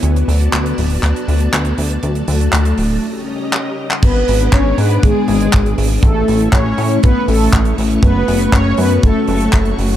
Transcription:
Already playing: B3
0.03 D2 F#4 D5 A5, closed hi-hat
0.16 closed hi-hat
0.28 D2, open hi-hat
0.41 closed hi-hat
0.53 D2, clap, closed hi-hat
0.66 closed hi-hat
0.78 D1, open hi-hat
0.90 open hi-hat
1.03 D2, clap, closed hi-hat
1.16 closed hi-hat
1.28 D2, open hi-hat
1.40 closed hi-hat
1.53 D2, clap, closed hi-hat
1.65 closed hi-hat
1.78 D2, open hi-hat
1.91 closed hi-hat
2.03 D2 A3 F#4 A5, closed hi-hat
2.15 closed hi-hat
2.28 D2, open hi-hat
2.41 closed hi-hat
2.53 D2, clap, closed hi-hat
2.65 closed hi-hat
2.78 D1, open hi-hat
2.90 open hi-hat
3.03 C#4 G4 D#5 A#5
3.53 clap
3.91 clap
4.03 G#1 B3 D4 G#4 B4 D5, kick, closed hi-hat, crash
4.28 G#1, open hi-hat
4.40 closed hi-hat
4.53 G#1 C#4 C#5, kick, clap, closed hi-hat
4.78 G#2 B3 B4, open hi-hat
4.91 closed hi-hat
5.03 G#1 G#3 G#4, kick, closed hi-hat
5.28 G#1 G#3 G#4, open hi-hat
5.40 closed hi-hat
5.53 G#1, kick, clap, closed hi-hat
5.66 closed hi-hat
5.78 G#1, open hi-hat
5.91 open hi-hat
6.03 A1 A3 C#4 E4 A4 C#6, kick
6.28 A1, open hi-hat
6.41 closed hi-hat
6.53 A1 C#4 C#5, kick, clap, closed hi-hat
6.78 A2, open hi-hat
6.91 closed hi-hat
7.03 A1 B3 B4, kick, closed hi-hat
7.28 A1 A3 A4, open hi-hat
7.41 open hi-hat
7.53 A1, kick, clap, closed hi-hat
7.65 closed hi-hat
7.78 A1, open hi-hat
7.91 closed hi-hat
8.03 F#1 B3 F#4 B4, kick, closed hi-hat
8.28 F#1, open hi-hat
8.41 closed hi-hat
8.53 F#1 C#4 C#5, kick, clap, closed hi-hat
8.77 F#2 B3 B4, open hi-hat
8.91 closed hi-hat
9.03 F#1 A3 A4, kick, closed hi-hat
9.28 F#1 A3 A4, open hi-hat
9.41 closed hi-hat
9.53 F#1, kick, clap, closed hi-hat
9.65 closed hi-hat
9.78 F#1, open hi-hat
9.90 open hi-hat

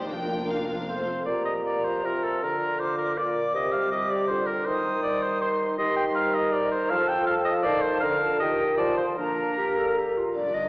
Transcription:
Already playing: D#2 F2 F3
0.02 D4
0.06 F1 F2 A#3 A#4
0.11 D4 F4 A#4 G5
0.50 F5
0.71 F2
0.76 F3
0.80 C4
0.85 A3 C4 A4
0.89 C5
1.26 A#2 G4 D5 A#5
1.45 F3 D#5
1.65 A#4 D5
1.85 F4 C5
2.04 C3 F4 A#4
2.23 D4 A4
2.42 D3 F4 A#4 A#5
2.61 D4
2.79 F4 C5 D6
2.98 A#4 D5
3.17 A#2 F4 A#4 D5 D6
3.36 A#4
3.54 C3 G4 D#5
3.72 G3 F5
3.91 G4 C5 D#5
4.10 G4 D5
4.27 D3 F4 C5
4.46 G4 A#4
4.65 D#3 D#4 C5 D#6
4.87 G3
5.03 C5 D5
5.23 G4 C5
5.41 C5 C6
5.61 G4
5.78 D#3 G4 D#5 C6
5.96 G3 G5
6.15 C5 F5 A#5
6.34 G4 D#5
6.52 A#4 C5 D5
6.71 G4 C5
6.90 F3 A4 F5 A5
7.08 F4 G5
7.26 A4 F5 A5
7.45 D#5 F5
7.63 D#3 A4 C5 D5 A5
7.82 C5
8.00 D3 A#4 F5 A#5
8.22 F4 A#4 A5
8.40 D#3 G4 D#5 G5
8.60 G4 A#4
8.77 F3 F4 D5 A5
8.97 F4 A4 C5
9.17 A#2 A#3 D4 A#4 A#5
9.38 D4
9.57 G4 A#4
9.78 A4 D5
9.97 G4 A#4
10.17 F4
10.35 G1 G2 D4 A#4 D5
10.54 D3 D#5

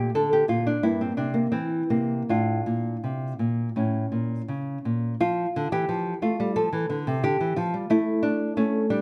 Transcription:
Already playing: A3 G4
0.15 D3 A4
0.33 G4
0.48 A#2 F4
0.67 D4
0.83 G2 A#3 E4
1.01 C4
1.17 C3 D4
1.34 A#3
1.52 E3 C4
1.90 C3 A#3
2.29 A2 D4 F4
2.66 A#2
3.04 C3
3.39 A#2
3.76 A2 C#4
4.12 A#2
4.48 C#3
4.85 A#2
5.20 F3 F4
5.56 D3
5.72 E3 G4
5.89 F3
6.22 A3 F4
6.40 G3
6.56 F3 A4
6.73 E3
6.90 D3
7.07 C3
7.23 D3 G4
7.40 E3
7.56 F3 F4
7.74 G3
7.90 A3 E4
8.23 D4
8.57 A3 C#4
8.90 G3 D4

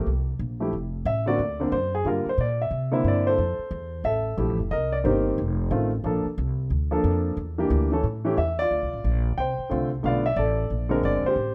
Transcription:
0.06 C2
0.39 A#1
0.60 F3 A3 E4 G4
0.73 F1
1.05 A1 E5
1.26 D3 A#3 C4 F#4 D5
1.39 D2
1.60 D3 A#3 C4 D4
1.72 F#2 C5
1.95 G#4
2.05 G2 D3 G3 A#3 F4 A#4
2.26 C5, muted upright bass stroke
2.38 A#2 D5
2.62 E5
2.71 C3
2.91 D3 A#3 C4 E4
3.04 G2 D5
3.27 A4 C5
3.38 F2
3.59 muted upright bass stroke
3.71 E2
4.04 A1 A4 E5
4.37 A#1 F3 A3 E4 G4
4.49 A1
4.60 F1
4.71 C2 A#4 D#5
4.92 D5
5.04 G1 D#3 A#3 C4 D#4 G4 C5
5.38 F1
5.70 A1 D#3 A3 C4 F4
6.04 A#1 F3 A#3 D4 A4
6.25 muted upright bass stroke
6.38 C2
6.70 D2
6.91 F3 A#3 D4 A4
7.04 F2
7.37 E2
7.58 E3 A#3 D4 G4
7.70 D2
7.92 E3 A3 C#4 A4
8.04 A2
8.25 E3 A3 C#4 G4
8.38 E2 E5
8.59 F4 D5
8.71 D2
8.82 C2
8.93 A1
9.04 A#1
9.37 C2 C5 G5
9.59 muted upright bass stroke
9.70 C2 D3 A3 C4 F4
10.03 B1 D3 A3 B3 F4 F5
10.08 D5
10.26 E5
10.36 A1 A4 D5
10.70 A#1
10.89 D3 G#3 C4 A#4
11.03 G1 D5
11.23 C5, muted upright bass stroke
11.28 G4
11.36 A1

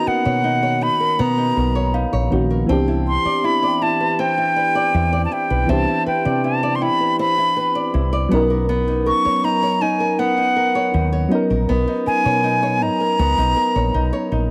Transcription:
Already playing: D#3 A#3 B3 C#4 D#4 F#4 C#5 D#5
0.07 A#4 F#5, muted fretless electric bass stroke
0.25 B2 C#5
0.44 D#4
0.63 C#5
0.81 D#4 B5
1.00 A#4
1.19 B2 B3 A#5
1.38 D#4
1.57 B1 A#4
1.75 C#5
1.94 D#4 F5
2.13 A#1 C#5
2.30 A#1 D#3 A#3 B3 C#4 D#4 F#4
2.50 A#4
2.66 C2 E3 B3 C4 A5
2.71 D4 G4
2.88 E4
3.08 C6
3.25 D5, muted fretless electric bass stroke
3.44 E4 E5 B5
3.63 D5
3.67 G5
3.81 E4 A5
4.00 B4
4.19 C4 G5
4.38 E4
4.56 B4 D5
4.75 D5
4.94 E2 E4
5.13 D5
5.25 A5
5.32 E4 G5
5.50 B1 B4
5.66 C2 E3 B3 C4 E5 A5
5.71 D4 G4
5.88 E4
5.93 G5
6.06 B4 G5, muted fretless electric bass stroke
6.25 C3 D5
6.44 E4 A5
6.63 D5
6.75 C6
6.81 E4 G5 B5
7.00 B4
7.19 C4 B5
7.38 E4
7.57 B4
7.75 D5
7.94 C2 E4
8.13 D5
8.29 B1 F#3 B3 C#4
8.33 D#4 A#4
8.50 A#4
8.69 B3
8.88 D#4
9.06 A#4 C#6
9.25 C#5, muted fretless electric bass stroke
9.44 D#4 A#5
9.63 C#5
9.82 D#4 G#5
10.00 A#4
10.19 B3 F#5
10.38 D#4
10.56 A#4
10.75 C#5
10.94 D#2 D#4
11.13 C#5
11.29 F#3 B3 C#4 D#4
11.33 D#4 A#4
11.50 A#1 A#4
11.69 B1 B3
11.88 D#4
12.06 A#4 G#5, muted fretless electric bass stroke
12.25 B2 C#5
12.44 D#4 G#5
12.63 C#5
12.81 D#4 A#5
13.00 A#4
13.19 C#2 B3
13.38 B1 D#4
13.57 A#4
13.76 A#1 C#5
13.94 B1 D#4
14.13 C#5
14.32 A#1 D#4

